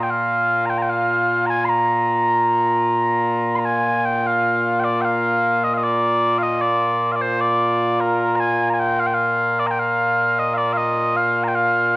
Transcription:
0.00 11.97 A#2 medium
0.00 11.97 A#3 medium
0.00 11.97 F4 medium
0.00 0.10 G5 medium
0.10 0.66 F5 medium
0.66 0.78 G5 medium
0.66 0.70 A#5 medium
0.78 0.82 A#5 medium
0.82 0.90 G5 medium
0.90 1.46 F5 medium
1.46 1.65 G#5 loud
1.46 1.50 A#5 loud
1.65 1.69 C6 loud
1.69 3.55 A#5 loud
3.55 3.65 A#5 medium
3.55 3.59 C6 medium
3.65 4.05 G#5 medium
4.05 4.27 G5 loud
4.27 4.80 F5 medium
4.80 4.84 G5 medium
4.84 5.01 D5 medium
5.01 5.64 F5 loud
5.01 5.05 G5 loud
5.64 5.73 D#5 medium
5.73 5.84 D#5 medium
5.73 5.77 F5 medium
5.84 6.38 D5 medium
6.38 6.43 F5 loud
6.43 6.61 D#5 loud
6.61 7.12 D5 loud
7.12 7.21 D5 medium
7.12 7.16 F5 medium
7.21 7.41 C5 medium
7.41 8.00 D5 loud
8.00 8.36 A#4 medium
8.36 8.70 G#5 loud
8.36 8.40 A#5 loud
8.70 8.80 G#5 medium
8.70 8.74 A#5 medium
8.80 9.00 G5 loud
9.00 9.07 F5 loud
9.07 9.14 G5 medium
9.14 9.60 F5 loud
9.60 9.67 D5 medium
9.67 9.79 G5 medium
9.67 9.71 A#5 medium
9.79 10.39 F5 loud
10.39 10.54 D#5 medium
10.54 10.73 D5 medium
10.54 10.57 F5 medium
10.73 11.16 D#5 loud
10.73 10.77 F5 loud
11.16 11.44 F5 loud
11.44 11.48 A#5 medium
11.48 11.55 G5 medium
11.55 11.95 F5 loud

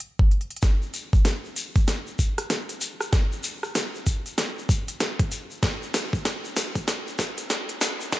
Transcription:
0.00 closed hi-hat medium
0.19 kick loud
0.31 closed hi-hat soft
0.41 closed hi-hat soft
0.50 closed hi-hat soft
0.56 closed hi-hat soft
0.62 kick loud
0.62 snare soft
0.62 closed hi-hat medium
0.62 shaker soft
0.82 shaker soft
0.94 closed hi-hat medium
0.94 shaker medium
1.13 kick loud
1.13 shaker soft
1.25 snare soft
1.25 closed hi-hat medium
1.25 shaker medium
1.45 shaker soft
1.56 closed hi-hat medium
1.56 shaker medium
1.76 kick loud
1.76 closed hi-hat soft
1.76 shaker soft
1.88 snare soft
1.88 closed hi-hat medium
1.88 shaker medium
2.07 shaker soft
2.19 kick medium
2.19 closed hi-hat soft
2.19 shaker medium
2.38 cross-stick soft
2.38 closed hi-hat medium
2.38 shaker soft
2.50 snare medium
2.50 closed hi-hat medium
2.50 shaker soft
2.69 closed hi-hat medium
2.69 shaker soft
2.81 closed hi-hat medium
2.81 shaker medium
3.01 cross-stick soft
3.01 shaker soft
3.13 kick loud
3.13 snare medium
3.13 closed hi-hat medium
3.13 shaker medium
3.32 shaker soft
3.43 closed hi-hat medium
3.43 shaker medium
3.63 cross-stick soft
3.63 shaker soft
3.75 snare medium
3.75 closed hi-hat medium
3.75 shaker medium
3.95 shaker soft
4.07 kick medium
4.07 closed hi-hat medium
4.07 shaker medium
4.26 closed hi-hat soft
4.26 shaker soft
4.38 snare medium
4.38 closed hi-hat medium
4.38 shaker medium
4.58 shaker soft
4.69 kick loud
4.69 shaker medium
4.88 closed hi-hat medium
4.88 shaker soft
5.00 snare medium
5.00 closed hi-hat medium
5.00 shaker medium
5.19 kick loud
5.19 closed hi-hat medium
5.19 shaker soft
5.32 closed hi-hat medium
5.32 shaker medium
5.51 shaker soft
5.63 kick loud
5.63 snare medium
5.63 closed hi-hat medium
5.63 shaker medium
5.82 shaker soft
5.94 snare medium
5.94 closed hi-hat medium
5.94 shaker medium
6.13 kick loud
6.13 shaker soft
6.25 snare medium
6.25 closed hi-hat medium
6.25 shaker medium
6.44 shaker soft
6.57 snare medium
6.57 closed hi-hat medium
6.57 shaker medium
6.75 kick loud
6.75 closed hi-hat soft
6.75 shaker soft
6.88 snare medium
6.88 closed hi-hat medium
6.88 shaker medium
7.07 shaker soft
7.19 kick medium
7.19 snare medium
7.19 closed hi-hat soft
7.19 shaker medium
7.38 closed hi-hat medium
7.38 shaker soft
7.50 snare medium
7.50 closed hi-hat medium
7.50 shaker medium
7.69 closed hi-hat medium
7.69 shaker soft
7.81 snare medium
7.81 closed hi-hat medium
7.81 shaker loud
8.01 shaker soft
8.12 kick loud
8.12 snare medium
8.12 closed hi-hat medium
8.12 shaker soft

